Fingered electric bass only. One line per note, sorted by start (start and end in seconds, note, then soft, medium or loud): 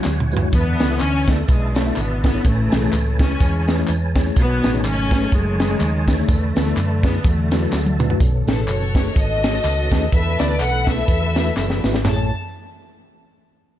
0.06 0.46 D2 medium
0.53 0.76 E2 loud
0.81 0.98 C#2 medium
1.01 1.42 D2 medium
1.49 1.89 B1 loud
1.97 2.37 G#1 loud
2.45 2.68 A1 loud
2.72 2.90 B1 medium
2.92 3.33 C#2 loud
3.41 3.81 E2 loud
3.89 4.29 E2 medium
4.37 4.60 B1 loud
4.64 4.82 A1 loud
4.84 5.25 G#1 medium
5.33 5.73 F#1 loud
5.81 6.21 D#2 loud
6.29 6.52 E2 loud
6.56 6.73 D2 medium
6.77 7.17 F#2 medium
7.25 7.65 E2 loud
7.72 8.13 D2 medium
8.20 8.44 B1 loud
8.47 8.65 A1 medium
8.67 9.08 F#1 medium
9.16 9.57 G#1 medium
9.64 9.87 C#2 medium
9.92 10.09 D#2 medium
10.12 10.36 E2 loud
10.40 10.57 D2 loud
10.61 11.01 B1 loud
11.08 11.49 E2 loud
11.56 11.80 F#1 medium
11.84 12.01 G#1 medium
12.05 12.30 A1 medium